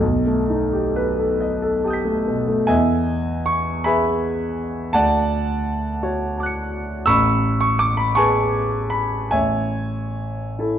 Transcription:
0, 0, Header, 1, 2, 480
1, 0, Start_track
1, 0, Tempo, 946372
1, 8, Time_signature, 6, 3, 24, 8
1, 487, Tempo, 867052
1, 1447, Tempo, 764331
1, 2407, Tempo, 718563
1, 5287, Tempo, 787402
1, 5767, Tempo, 846262
1, 6599, End_track
2, 0, Start_track
2, 0, Title_t, "Grand piano"
2, 0, Program_c, 0, 0
2, 0, Control_c, 0, 64, 127
2, 3, Note_on_c, 0, 35, 59
2, 18, Control_c, 0, 64, 0
2, 113, Control_c, 0, 64, 127
2, 133, Note_on_c, 0, 57, 49
2, 252, Note_on_c, 0, 63, 44
2, 325, Note_off_c, 0, 57, 0
2, 370, Note_on_c, 0, 67, 47
2, 441, Note_off_c, 0, 63, 0
2, 487, Note_on_c, 0, 71, 54
2, 561, Note_off_c, 0, 67, 0
2, 615, Note_on_c, 0, 69, 43
2, 684, Note_off_c, 0, 71, 0
2, 733, Note_on_c, 0, 75, 54
2, 807, Note_off_c, 0, 69, 0
2, 853, Note_on_c, 0, 69, 50
2, 926, Note_off_c, 0, 75, 0
2, 973, Note_on_c, 0, 67, 46
2, 976, Note_on_c, 0, 81, 36
2, 992, Note_on_c, 0, 87, 38
2, 1009, Note_on_c, 0, 91, 38
2, 1026, Note_on_c, 0, 95, 37
2, 1046, Note_off_c, 0, 69, 0
2, 1089, Note_on_c, 0, 57, 46
2, 1168, Note_off_c, 0, 67, 0
2, 1214, Note_on_c, 0, 47, 41
2, 1286, Note_off_c, 0, 57, 0
2, 1329, Note_on_c, 0, 57, 44
2, 1402, Note_off_c, 0, 47, 0
2, 1422, Note_off_c, 0, 35, 0
2, 1426, Note_off_c, 0, 81, 0
2, 1433, Note_on_c, 0, 80, 85
2, 1434, Note_off_c, 0, 87, 0
2, 1440, Note_on_c, 0, 76, 59
2, 1442, Note_on_c, 0, 75, 65
2, 1443, Note_off_c, 0, 91, 0
2, 1443, Note_on_c, 0, 40, 52
2, 1444, Note_off_c, 0, 57, 0
2, 1452, Note_off_c, 0, 95, 0
2, 1459, Control_c, 0, 64, 0
2, 1566, Control_c, 0, 64, 127
2, 1910, Note_off_c, 0, 75, 0
2, 1910, Note_off_c, 0, 76, 0
2, 1926, Note_on_c, 0, 85, 83
2, 1931, Note_off_c, 0, 80, 0
2, 2168, Note_on_c, 0, 83, 77
2, 2169, Note_off_c, 0, 85, 0
2, 2173, Note_on_c, 0, 80, 58
2, 2177, Note_on_c, 0, 76, 61
2, 2178, Note_on_c, 0, 68, 44
2, 2181, Note_on_c, 0, 71, 44
2, 2861, Note_off_c, 0, 40, 0
2, 2863, Note_off_c, 0, 80, 0
2, 2865, Note_off_c, 0, 68, 0
2, 2865, Note_off_c, 0, 76, 0
2, 2867, Note_off_c, 0, 71, 0
2, 2879, Note_on_c, 0, 81, 98
2, 2887, Note_off_c, 0, 83, 0
2, 2888, Note_on_c, 0, 78, 73
2, 2889, Note_on_c, 0, 74, 71
2, 2892, Note_on_c, 0, 38, 54
2, 2902, Control_c, 0, 64, 0
2, 3021, Control_c, 0, 64, 127
2, 3614, Note_on_c, 0, 66, 47
2, 3614, Note_on_c, 0, 73, 53
2, 3833, Note_off_c, 0, 81, 0
2, 3844, Note_on_c, 0, 81, 37
2, 3862, Note_on_c, 0, 86, 37
2, 3882, Note_on_c, 0, 90, 38
2, 3903, Note_on_c, 0, 97, 38
2, 4290, Note_off_c, 0, 74, 0
2, 4290, Note_off_c, 0, 78, 0
2, 4291, Note_off_c, 0, 81, 0
2, 4292, Note_off_c, 0, 38, 0
2, 4292, Note_off_c, 0, 66, 0
2, 4293, Note_off_c, 0, 73, 0
2, 4300, Note_off_c, 0, 86, 0
2, 4300, Note_on_c, 0, 88, 96
2, 4308, Note_on_c, 0, 85, 72
2, 4309, Note_on_c, 0, 83, 78
2, 4310, Note_off_c, 0, 90, 0
2, 4311, Note_on_c, 0, 33, 58
2, 4320, Note_off_c, 0, 97, 0
2, 4331, Control_c, 0, 64, 0
2, 4440, Control_c, 0, 64, 127
2, 4650, Note_off_c, 0, 85, 0
2, 4651, Note_off_c, 0, 83, 0
2, 4667, Note_on_c, 0, 85, 80
2, 4672, Note_off_c, 0, 88, 0
2, 4791, Note_on_c, 0, 86, 90
2, 4794, Note_off_c, 0, 85, 0
2, 4912, Note_on_c, 0, 83, 72
2, 4916, Note_off_c, 0, 86, 0
2, 5032, Note_on_c, 0, 85, 88
2, 5036, Note_off_c, 0, 83, 0
2, 5043, Note_on_c, 0, 80, 66
2, 5043, Note_on_c, 0, 81, 67
2, 5045, Note_on_c, 0, 68, 45
2, 5047, Note_on_c, 0, 71, 47
2, 5495, Note_off_c, 0, 80, 0
2, 5495, Note_off_c, 0, 81, 0
2, 5510, Note_on_c, 0, 83, 73
2, 5515, Note_off_c, 0, 85, 0
2, 5738, Note_off_c, 0, 33, 0
2, 5743, Note_off_c, 0, 68, 0
2, 5744, Note_off_c, 0, 71, 0
2, 5759, Note_on_c, 0, 80, 76
2, 5761, Note_off_c, 0, 83, 0
2, 5766, Note_on_c, 0, 76, 55
2, 5767, Note_on_c, 0, 73, 57
2, 5771, Note_on_c, 0, 33, 46
2, 5777, Control_c, 0, 64, 0
2, 5899, Control_c, 0, 64, 127
2, 6485, Note_on_c, 0, 64, 36
2, 6489, Note_on_c, 0, 69, 39
2, 6583, Note_off_c, 0, 73, 0
2, 6583, Note_off_c, 0, 76, 0
2, 6599, Note_off_c, 0, 33, 0
2, 6599, Note_off_c, 0, 64, 0
2, 6599, Note_off_c, 0, 69, 0
2, 6599, Note_off_c, 0, 80, 0
2, 6599, End_track
0, 0, End_of_file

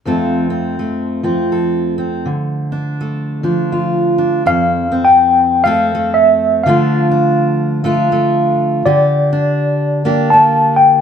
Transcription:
0, 0, Header, 1, 3, 480
1, 0, Start_track
1, 0, Key_signature, -1, "major"
1, 0, Tempo, 733496
1, 33, Time_signature, 3, 2, 24, 8
1, 7206, End_track
2, 0, Start_track
2, 0, Title_t, "Tine electric piano"
2, 0, Program_c, 0, 4
2, 2925, Note_on_c, 0, 77, 80
2, 3302, Note_on_c, 0, 79, 77
2, 3319, Note_off_c, 0, 77, 0
2, 3689, Note_on_c, 0, 77, 72
2, 3701, Note_off_c, 0, 79, 0
2, 4018, Note_on_c, 0, 76, 64
2, 4033, Note_off_c, 0, 77, 0
2, 4342, Note_on_c, 0, 77, 73
2, 4364, Note_off_c, 0, 76, 0
2, 5576, Note_off_c, 0, 77, 0
2, 5795, Note_on_c, 0, 74, 72
2, 6743, Note_on_c, 0, 81, 74
2, 6784, Note_off_c, 0, 74, 0
2, 7022, Note_off_c, 0, 81, 0
2, 7044, Note_on_c, 0, 79, 68
2, 7206, Note_off_c, 0, 79, 0
2, 7206, End_track
3, 0, Start_track
3, 0, Title_t, "Steel-string acoustic guitar"
3, 0, Program_c, 1, 25
3, 36, Note_on_c, 1, 41, 50
3, 40, Note_on_c, 1, 53, 41
3, 47, Note_on_c, 1, 57, 44
3, 50, Note_on_c, 1, 60, 35
3, 53, Note_on_c, 1, 69, 39
3, 320, Note_off_c, 1, 60, 0
3, 328, Note_on_c, 1, 60, 36
3, 515, Note_off_c, 1, 57, 0
3, 517, Note_on_c, 1, 57, 36
3, 804, Note_off_c, 1, 53, 0
3, 805, Note_off_c, 1, 60, 0
3, 807, Note_on_c, 1, 53, 38
3, 812, Note_on_c, 1, 60, 38
3, 992, Note_off_c, 1, 69, 0
3, 995, Note_on_c, 1, 69, 42
3, 1287, Note_off_c, 1, 60, 0
3, 1295, Note_on_c, 1, 60, 41
3, 1476, Note_on_c, 1, 50, 46
3, 1477, Note_off_c, 1, 41, 0
3, 1478, Note_off_c, 1, 60, 0
3, 1780, Note_on_c, 1, 62, 39
3, 1964, Note_off_c, 1, 57, 0
3, 1967, Note_on_c, 1, 57, 44
3, 2243, Note_off_c, 1, 53, 0
3, 2243, Note_off_c, 1, 62, 0
3, 2246, Note_on_c, 1, 53, 43
3, 2250, Note_on_c, 1, 62, 42
3, 2434, Note_off_c, 1, 69, 0
3, 2436, Note_on_c, 1, 65, 39
3, 2731, Note_off_c, 1, 62, 0
3, 2737, Note_on_c, 1, 62, 44
3, 2892, Note_off_c, 1, 53, 0
3, 2894, Note_off_c, 1, 50, 0
3, 2897, Note_off_c, 1, 62, 0
3, 2900, Note_off_c, 1, 57, 0
3, 2916, Note_on_c, 1, 41, 57
3, 2918, Note_off_c, 1, 65, 0
3, 2921, Note_on_c, 1, 69, 57
3, 3217, Note_on_c, 1, 60, 46
3, 3694, Note_off_c, 1, 60, 0
3, 3699, Note_on_c, 1, 57, 46
3, 3703, Note_on_c, 1, 60, 43
3, 3710, Note_off_c, 1, 69, 0
3, 3712, Note_on_c, 1, 69, 54
3, 3880, Note_off_c, 1, 57, 0
3, 3891, Note_on_c, 1, 57, 46
3, 4341, Note_off_c, 1, 57, 0
3, 4345, Note_off_c, 1, 69, 0
3, 4356, Note_off_c, 1, 41, 0
3, 4356, Note_on_c, 1, 50, 58
3, 4361, Note_on_c, 1, 53, 52
3, 4362, Note_off_c, 1, 60, 0
3, 4365, Note_on_c, 1, 57, 51
3, 4370, Note_on_c, 1, 62, 53
3, 4375, Note_on_c, 1, 65, 56
3, 4652, Note_off_c, 1, 62, 0
3, 4655, Note_on_c, 1, 62, 41
3, 5122, Note_off_c, 1, 57, 0
3, 5130, Note_on_c, 1, 57, 51
3, 5133, Note_off_c, 1, 62, 0
3, 5134, Note_off_c, 1, 65, 0
3, 5135, Note_on_c, 1, 62, 48
3, 5142, Note_on_c, 1, 65, 58
3, 5306, Note_off_c, 1, 57, 0
3, 5314, Note_on_c, 1, 57, 46
3, 5772, Note_off_c, 1, 57, 0
3, 5773, Note_off_c, 1, 50, 0
3, 5776, Note_off_c, 1, 53, 0
3, 5776, Note_off_c, 1, 62, 0
3, 5795, Note_on_c, 1, 50, 60
3, 5798, Note_off_c, 1, 65, 0
3, 5801, Note_on_c, 1, 67, 59
3, 6103, Note_on_c, 1, 62, 50
3, 6571, Note_off_c, 1, 62, 0
3, 6577, Note_on_c, 1, 58, 50
3, 6579, Note_on_c, 1, 62, 53
3, 6581, Note_off_c, 1, 67, 0
3, 6583, Note_on_c, 1, 67, 52
3, 6754, Note_off_c, 1, 58, 0
3, 6762, Note_on_c, 1, 58, 47
3, 7206, Note_off_c, 1, 50, 0
3, 7206, Note_off_c, 1, 58, 0
3, 7206, Note_off_c, 1, 62, 0
3, 7206, Note_off_c, 1, 67, 0
3, 7206, End_track
0, 0, End_of_file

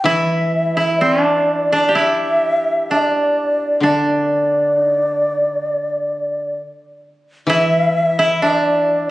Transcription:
0, 0, Header, 1, 4, 480
1, 0, Start_track
1, 0, Tempo, 950872
1, 26, Time_signature, 4, 2, 24, 8
1, 1466, Tempo, 914634
1, 4720, End_track
2, 0, Start_track
2, 0, Title_t, "Shakuhachi"
2, 0, Program_c, 0, 77
2, 25, Note_on_c, 0, 76, 77
2, 501, Note_on_c, 0, 74, 73
2, 508, Note_off_c, 0, 76, 0
2, 988, Note_on_c, 0, 76, 96
2, 995, Note_off_c, 0, 74, 0
2, 1465, Note_on_c, 0, 74, 77
2, 1473, Note_off_c, 0, 76, 0
2, 1950, Note_off_c, 0, 74, 0
2, 1959, Note_on_c, 0, 76, 72
2, 1976, Note_on_c, 0, 74, 79
2, 1982, Note_off_c, 0, 76, 0
2, 3373, Note_off_c, 0, 74, 0
2, 3876, Note_on_c, 0, 76, 105
2, 4363, Note_on_c, 0, 74, 82
2, 4371, Note_off_c, 0, 76, 0
2, 4720, Note_off_c, 0, 74, 0
2, 4720, End_track
3, 0, Start_track
3, 0, Title_t, "Koto"
3, 0, Program_c, 1, 107
3, 28, Note_on_c, 1, 64, 78
3, 385, Note_off_c, 1, 64, 0
3, 387, Note_on_c, 1, 64, 67
3, 510, Note_on_c, 1, 60, 58
3, 611, Note_off_c, 1, 60, 0
3, 611, Note_on_c, 1, 62, 58
3, 869, Note_off_c, 1, 62, 0
3, 871, Note_on_c, 1, 62, 59
3, 952, Note_on_c, 1, 67, 51
3, 983, Note_off_c, 1, 64, 0
3, 985, Note_on_c, 1, 64, 75
3, 1466, Note_off_c, 1, 62, 0
3, 1468, Note_on_c, 1, 62, 62
3, 1951, Note_off_c, 1, 62, 0
3, 1953, Note_on_c, 1, 62, 61
3, 2002, Note_off_c, 1, 67, 0
3, 2154, Note_off_c, 1, 64, 0
3, 2457, Note_off_c, 1, 62, 0
3, 2457, Note_on_c, 1, 63, 61
3, 2588, Note_off_c, 1, 63, 0
3, 2588, Note_on_c, 1, 62, 61
3, 2740, Note_off_c, 1, 62, 0
3, 2740, Note_on_c, 1, 63, 61
3, 2872, Note_off_c, 1, 63, 0
3, 2872, Note_on_c, 1, 62, 61
3, 3370, Note_off_c, 1, 62, 0
3, 3875, Note_on_c, 1, 64, 77
3, 4237, Note_off_c, 1, 64, 0
3, 4239, Note_on_c, 1, 64, 79
3, 4362, Note_on_c, 1, 62, 68
3, 4712, Note_off_c, 1, 64, 0
3, 4720, Note_off_c, 1, 62, 0
3, 4720, End_track
4, 0, Start_track
4, 0, Title_t, "Koto"
4, 0, Program_c, 2, 107
4, 20, Note_on_c, 2, 52, 53
4, 1462, Note_off_c, 2, 52, 0
4, 1939, Note_on_c, 2, 50, 56
4, 3384, Note_off_c, 2, 50, 0
4, 3860, Note_on_c, 2, 52, 66
4, 4720, Note_off_c, 2, 52, 0
4, 4720, End_track
0, 0, End_of_file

